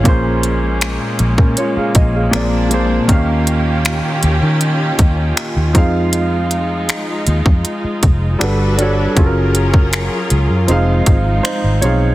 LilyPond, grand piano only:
\new Staff \with { instrumentName = "Grand piano" } { \time 4/4 \key bes \minor \tempo 4 = 79 << { <f' des''>16 r4. <des' bes'>16 <f' des''>16 <aes' f''>16 ees''16 <aes' f''>8 r8. | r1 | r1 | r2. <ees' c''>8 <f' des''>8 | } \\ { <bes, bes des' aes' c''>4. r4. <bes, bes c' aes' d''>8 <bes, bes c' aes' c''>8 | <ees bes des' g' f''>4. r2 <f c' ees' aes' f''>8~ | <f c' ees' aes' f''>4 r2 <g d' fis' a' b'>8 <g d' fis' a' des''>8 | <ges des' f' aes' a' bes'>4. r8 <f c' ees' aes' f''>4 r8 <f c' ees' aes' f''>8 | } >> }